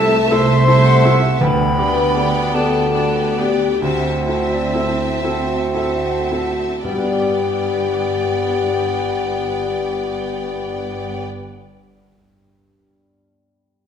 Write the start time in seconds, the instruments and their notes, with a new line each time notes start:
Already playing: tuba C2, double bass section C2, grand piano C2 A3 E4 A4, cello section C3, bassoon A3, viola section A3, french horn section A4, clarinet E5, violin section E5 A5, flute A5
0.29 tuba C2, double bass section C2, cello section C3, grand piano A3 E4 A4, bassoon A3, french horn section C5, clarinet E5, flute C6
0.66 viola section A3, grand piano E4 A4, violin section E5 A5
0.85 clarinet F#5
1.04 grand piano A3 E4 A4
1.40 tuba D2, double bass section D2, grand piano D2, timpani D3, cello section D3, bassoon B3, french horn section B4, clarinet G5, flute B5
1.77 viola section B3, grand piano D4 G4, violin section D5 G5
2.15 grand piano B3 D4 G4
2.53 tuba D2, double bass section D2, cello section D3, grand piano B3 D4 G4, french horn section A4, flute A5
2.94 viola section B3, grand piano D4 G4, violin section D5 G5
3.38 grand piano B3 D4 G4, french horn section G4, flute G5
3.81 grand piano D2, tuba D2, double bass section D2, cello section D3, viola section C4, bassoon C4, french horn section F#4, violin section E5 A5, clarinet E5, flute F#5
4.27 viola section C4, grand piano E4 A4, violin section E5 A5
4.50 french horn section D4, flute D5
4.73 grand piano C4 E4 A4, french horn section E4, flute E5
5.21 double bass section D2, tuba D2, cello section D3, bassoon C4, grand piano C4 E4 A4, french horn section F#4, clarinet E5, flute F#5
5.74 viola section C4, grand piano E4 A4, violin section E5 A5
6.31 grand piano C4 E4 A4
6.83 tuba G1, double bass section G1, cello section G2, grand piano G2, timpani G2, viola section B3, bassoon B3, french horn section G4, violin section D5 G5, clarinet D5, flute G5
6.91 grand piano G3
6.98 grand piano B3
7.05 grand piano D4
7.12 grand piano G4
7.19 grand piano D5